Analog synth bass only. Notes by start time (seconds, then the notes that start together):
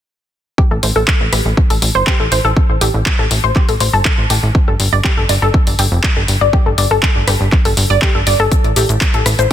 0.71 A1
0.83 A1
0.96 A1
1.21 A1
1.33 A1
1.45 A1
1.70 A1
1.82 A1
1.95 G1
2.20 A1
2.32 A1
2.45 A1
2.69 A1
2.81 A1
2.94 A1
3.19 A1
3.31 A1
3.44 A1
3.69 A1
3.80 A1
3.93 G1
4.18 A1
4.30 A1
4.43 A1
4.68 G1
4.80 G1
4.93 G1
5.17 G1
5.29 G1
5.42 G1
5.67 G1
5.79 G1
5.92 F1
6.17 G1
6.28 G1
6.41 G1
6.66 G1
6.78 G1
6.91 G1
7.16 G1
7.28 G1
7.40 G1
7.65 G1
7.77 G1
7.90 G1
8.15 G1
8.27 G1
8.40 G1
8.64 A1
8.76 A1
8.89 A1
9.14 A1
9.26 A1
9.39 A1